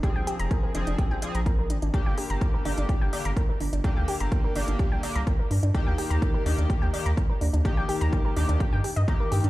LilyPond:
<<
  \new Staff \with { instrumentName = "Synth pluck" } { \time 4/4 \key g \phrygian \tempo 4 = 126 g'16 g''16 g'16 bes''16 bes'16 bes'16 d'16 d'16 g'16 g''16 d''16 bes''16 bes'16 bes'16 d'16 d'16 | g'16 g''16 g'16 bes''16 bes'16 bes'16 d'16 d'16 g'16 g''16 d''16 bes''16 bes'16 bes'16 d'16 d'16 | g'16 g''16 g'16 bes''16 bes'16 bes'16 d'16 d'16 g'16 g''16 d''16 bes''16 bes'16 bes'16 d'16 d'16 | g'16 g''16 g'16 bes''16 bes'16 bes'16 d'16 d'16 g'16 g''16 d''16 bes''16 bes'16 bes'16 d'16 d'16 |
g'16 g''16 g'16 bes''16 bes'16 bes'16 d'16 d'16 g'16 g''16 g'16 ees''16 bes''16 bes'16 g'16 d'16 | }
  \new Staff \with { instrumentName = "Analog polysynth" } { \time 4/4 \key g \phrygian <f c' aes'>4. <f c' aes'>4 <f c' aes'>8 r4 | <d bes g'>4. <d bes g'>4 <d bes g'>8 r4 | <d bes g'>4. <d bes g'>4 <d bes g'>8 r4 | <ees bes g'>4. <ees bes g'>4 <ees bes g'>8 r4 |
<ees bes g'>4. <ees bes g'>4 r8 <ees bes g'>4 | }
  \new Staff \with { instrumentName = "Analog synth bass" } { \clef bass \time 4/4 \key g \phrygian r16 c,16 r16 f,,16 r8 f,,16 f,,16 r16 bes,,16 r16 bes,,8. aes,,16 aes,,16 | r16 g,,16 r16 g,,16 r8 g,,16 g,,16 r16 g,,16 r16 g,,16 r8 g,,16 g,,16 | r16 d,16 r16 g,,16 r8 g,,16 g,,16 r16 c,16 r16 c,16 r8 g,16 g,16 | r16 ees,16 r16 ees,16 r8 ees,16 ees,16 r16 ees,16 r16 ees,16 r8 ees,16 ees,16 |
r16 bes,,16 r16 ees,16 r8 ees,16 ees,16 r16 g,16 r16 g,16 r8 g,16 g,16 | }
  \new DrumStaff \with { instrumentName = "Drums" } \drummode { \time 4/4 <hh bd>8 hh16 hh16 <hh bd>8 hh16 hh16 <hh bd>8 hh16 hh16 <hh bd>8 hh16 hh16 | <hh bd>8 hho16 hh16 <hh bd>8 hho16 hh16 <hh bd>8 hho16 hh16 <hh bd>8 hho16 hh16 | <hh bd>8 hho16 hh16 <hh bd>8 hho16 hh16 <hh bd>8 hho16 hh16 <hh bd>8 hho16 hh16 | <hh bd>8 hho16 hh16 <hh bd>8 hho16 hh16 <hh bd>8 hho16 hh16 <hh bd>8 hho16 hh16 |
<hh bd>8 hho16 hh16 <hh bd>8 hho16 hh16 <hh bd>8 hho16 hh16 <hh bd>8 hho16 hh16 | }
>>